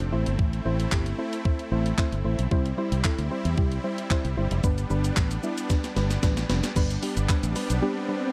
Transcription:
Already playing: supersaw synth F3 C4 D4 G4 A4
0.00 closed hi-hat
0.12 fingered electric bass A1, synth pluck A3 C4 E4 C5, supersaw synth A3 E4
0.26 fingered electric bass G1, closed hi-hat
0.39 fingered electric bass A1, kick
0.53 closed hi-hat
0.65 fingered electric bass A1, synth pluck A3 C4 E4 C5
0.80 closed hi-hat
0.92 fingered electric bass G1, synth pluck A3 C4 E4 G4, kick, clap
1.06 closed hi-hat
1.18 synth pluck A3 C4 E4 C5
1.33 closed hi-hat
1.45 synth pluck A3 C4 E4 C5, kick
1.59 closed hi-hat
1.71 fingered electric bass A1, synth pluck A3 C4 E4 C5
1.86 closed hi-hat
1.98 synth pluck A3 C4 E4 C5, kick, clap
2.12 fingered electric bass G1, closed hi-hat
2.24 fingered electric bass A1, synth pluck A3 C4 E4 C5
2.39 fingered electric bass B1, closed hi-hat
2.51 fingered electric bass C2, synth pluck G3 C4 E4 C5, supersaw synth G3 C4 E4, kick
2.66 closed hi-hat
2.78 synth pluck G3 C4 E4 C5
2.92 fingered electric bass C2, closed hi-hat
3.04 synth pluck G3 C4 E4 A4, kick, clap
3.18 fingered electric bass D2, closed hi-hat
3.31 synth pluck G3 C4 E4 C5
3.45 fingered electric bass E2, closed hi-hat
3.57 fingered electric bass C2, synth pluck G3 C4 E4 G4, kick
3.72 closed hi-hat
3.84 synth pluck G3 C4 E4 C5
3.98 closed hi-hat
4.10 synth pluck G3 C4 E4 C5, kick, clap
4.25 fingered electric bass C2, closed hi-hat
4.37 fingered electric bass G1, synth pluck G3 C4 E4 C5
4.51 fingered electric bass F1, closed hi-hat
4.64 synth pluck G3 B3 D4 B4, supersaw synth B3 D4, kick, shaker
4.78 closed hi-hat, shaker
4.90 fingered electric bass G1, synth pluck G3 B3 D4 B4, shaker
5.04 closed hi-hat, shaker
5.17 fingered electric bass A1, synth pluck G3 B3 D4 B4, kick, clap, shaker
5.31 closed hi-hat, shaker
5.43 synth pluck G3 B3 D4 E4, shaker
5.58 closed hi-hat, shaker
5.70 synth pluck G3 B3 D4 B4, kick, snare, shaker
5.84 snare, closed hi-hat, shaker
5.96 fingered electric bass G1, synth pluck G3 B3 D4 B4, snare, shaker
6.11 snare, closed hi-hat, shaker
6.23 fingered electric bass A1, synth pluck G3 B3 D4 B4, kick, snare, shaker
6.37 snare, closed hi-hat, shaker
6.49 fingered electric bass F1, synth pluck G3 B3 D4 B4, snare, shaker
6.63 snare, closed hi-hat, shaker
6.76 fingered electric bass G1, synth pluck G3 B3 D4 B4, supersaw synth G3 B3 D4, kick, crash, swell, shaker
6.90 closed hi-hat, shaker
7.02 synth pluck G3 B3 D4 G4, open hi-hat, shaker
7.17 fingered electric bass G1, closed hi-hat, shaker
7.29 synth pluck G3 B3 D4 B4, kick, clap, shaker
7.43 fingered electric bass A1, closed hi-hat, shaker
7.55 synth pluck G3 B3 D4 B4, open hi-hat, shaker
7.70 fingered electric bass B1, closed hi-hat, shaker
7.82 synth pluck G3 B3 D4 G4
8.09 synth pluck G3 B3 D4 B4

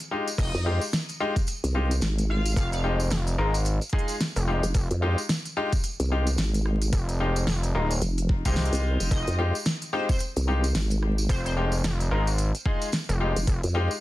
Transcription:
0.00 closed hi-hat
0.11 grand piano G#3 D#4 F4 G4
0.28 closed hi-hat, tambourine
0.38 analog synth bass F1, analog synth lead D#5, kick, closed hi-hat, crash
0.55 wobble bass F2, tambourine
0.66 grand piano G#3 D#4 F4 G4
0.81 tambourine
0.93 snare, closed hi-hat, tambourine
1.09 closed hi-hat, tambourine
1.20 grand piano G#3 D#4 F4 G4
1.36 kick, closed hi-hat, tambourine
1.47 closed hi-hat, tambourine
1.64 wobble bass C2, closed hi-hat, tambourine
1.75 grand piano G#3 D#4 F4 G4
1.91 closed hi-hat, tambourine
2.01 wobble bass G#1, snare, closed hi-hat, tambourine
2.18 closed hi-hat, tambourine
2.30 analog synth lead F5
2.45 closed hi-hat, tambourine
2.56 analog synth bass F1, analog synth lead F5, kick, closed hi-hat
2.72 analog synth lead F5, closed hi-hat, tambourine
2.84 grand piano G#3 D#4 F4 G4
3.00 tambourine
3.10 analog synth bass F1, snare, closed hi-hat, tambourine
3.27 closed hi-hat, tambourine
3.38 analog synth bass G#1, grand piano G#3 D#4 F4 A#4
3.54 closed hi-hat, tambourine
3.65 closed hi-hat, tambourine
3.81 closed hi-hat, tambourine
3.89 grand piano G#3 D#4 F4 G#4, kick, closed hi-hat
3.99 closed hi-hat
4.08 closed hi-hat, tambourine
4.20 snare, closed hi-hat, tambourine
4.36 analog synth bass F1, closed hi-hat, tambourine
4.48 grand piano G#3 D#4 F4 G4
4.63 wobble bass F1, closed hi-hat, tambourine
4.74 analog synth bass F1, kick, closed hi-hat, tambourine
4.91 wobble bass F2, closed hi-hat, tambourine
5.02 grand piano G#3 D#4 F4 G4
5.18 tambourine
5.29 snare, closed hi-hat, tambourine
5.45 closed hi-hat, tambourine
5.57 grand piano G#3 D#4 F4 G4
5.72 kick, closed hi-hat, tambourine
5.84 closed hi-hat, tambourine
6.00 wobble bass C2, closed hi-hat, tambourine
6.11 grand piano G#3 D#4 F4 G4
6.27 closed hi-hat, tambourine
6.38 wobble bass G#1, snare, closed hi-hat, tambourine
6.54 closed hi-hat, tambourine
6.66 cross-stick
6.82 closed hi-hat, tambourine
6.93 analog synth bass F1, kick, closed hi-hat, tambourine
7.09 closed hi-hat, tambourine
7.20 grand piano G#3 D#4 F4 G4
7.36 closed hi-hat, tambourine
7.47 analog synth bass F1, snare, tambourine
7.63 closed hi-hat, tambourine
7.75 analog synth bass D#1, grand piano G#3 D#4 F4 A#4
7.91 closed hi-hat, tambourine
8.02 wobble bass F1, closed hi-hat, tambourine
8.18 closed hi-hat, tambourine
8.29 kick
8.45 analog synth bass C2, grand piano G#3 D#4 F4 G4, kick, closed hi-hat, tambourine
8.56 snare, closed hi-hat, tambourine
8.65 closed hi-hat
8.72 wobble bass C2, closed hi-hat, tambourine
8.75 closed hi-hat
9.00 wobble bass F1, closed hi-hat, tambourine
9.11 analog synth bass F1, analog synth lead D#5, kick, closed hi-hat, tambourine
9.27 wobble bass F2, closed hi-hat, tambourine
9.38 grand piano G#3 D#4 F4 G4
9.55 tambourine
9.65 snare, closed hi-hat, tambourine
9.82 closed hi-hat, tambourine
9.93 grand piano G#3 D#4 F4 G4, analog synth lead C5
10.09 analog synth lead C5, kick, closed hi-hat, tambourine
10.19 closed hi-hat, tambourine
10.36 wobble bass C2, closed hi-hat, tambourine
10.48 grand piano G#3 D#4 F4 G4
10.64 closed hi-hat, tambourine
10.75 wobble bass G#1, snare, closed hi-hat, tambourine
10.90 closed hi-hat, tambourine
11.03 cross-stick
11.18 tambourine
11.29 analog synth bass F1, analog synth lead C5, kick, closed hi-hat, tambourine
11.45 analog synth lead C5, closed hi-hat, tambourine
11.57 grand piano G#3 D#4 F4 G4
11.72 tambourine
11.84 analog synth bass F1, snare, closed hi-hat, tambourine
12.00 closed hi-hat, tambourine
12.11 analog synth bass G#1, grand piano G#3 D#4 F4 A#4
12.27 closed hi-hat, tambourine
12.38 closed hi-hat, tambourine
12.55 closed hi-hat, tambourine
12.66 grand piano G#3 D#4 F4 G#4, kick
12.82 closed hi-hat, tambourine
12.92 snare, closed hi-hat, tambourine
13.09 analog synth bass F1, closed hi-hat, tambourine
13.20 grand piano G#3 D#4 F4 G4
13.36 wobble bass F1, closed hi-hat, tambourine
13.47 analog synth bass F1, kick, closed hi-hat, tambourine
13.63 wobble bass F2, closed hi-hat, tambourine
13.75 grand piano G#3 D#4 F4 G4
13.91 tambourine

